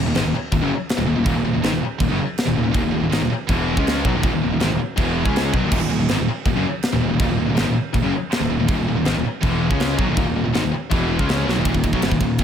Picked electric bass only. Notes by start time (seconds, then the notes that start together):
0.06 D#1
0.15 G#1
0.25 D#1
0.35 muted picked electric bass stroke
0.53 D#1
0.62 F#1
0.99 D#1
1.08 D#1
1.18 D#1
1.26 D#1
1.36 D#1
1.46 D#1
1.55 D#1
1.64 G#1
1.73 D#1
1.83 muted picked electric bass stroke
2.01 D#1
2.11 F#1
2.48 D#1
2.57 D#1
2.67 D#1
2.75 D#1
2.85 D#1
2.93 D#1
3.01 D#1
3.12 G#1
3.21 D#1
3.30 muted picked electric bass stroke
3.49 E1
3.78 C#2
4.05 B1
4.14 D#1
4.23 D#1
4.34 D#1
4.44 D#1
4.53 D#1
4.62 G#1
4.72 D#1
4.82 muted picked electric bass stroke
4.98 E1
5.26 C#2
5.54 B1
5.64 D#1
5.72 D#1
5.83 D#1
5.92 D#1
6.02 D#1
6.11 G#1
6.20 D#1
6.30 muted picked electric bass stroke
6.46 D#1
6.57 F#1
6.94 D#1
7.03 D#1
7.13 D#1
7.20 D#1
7.30 D#1
7.39 D#1
7.48 D#1
7.58 G#1
7.67 D#1
7.77 muted picked electric bass stroke
7.95 D#1
8.04 F#1
8.41 D#1
8.51 D#1
8.61 D#1
8.69 D#1
8.78 D#1
8.88 D#1
8.97 D#1
9.07 G#1
9.16 D#1
9.25 muted picked electric bass stroke
9.43 E1
9.71 C#2
9.99 B1
10.10 D#1
10.17 D#1
10.29 D#1
10.37 D#1
10.47 D#1
10.56 G#1
10.64 D#1
10.75 muted picked electric bass stroke
10.92 E1
11.20 C#2
11.47 B1
11.57 D#1
11.66 D#1
11.75 D#1
11.84 D#1
11.94 B1
12.04 F#1
12.12 D#1
12.21 D#1
12.40 D#1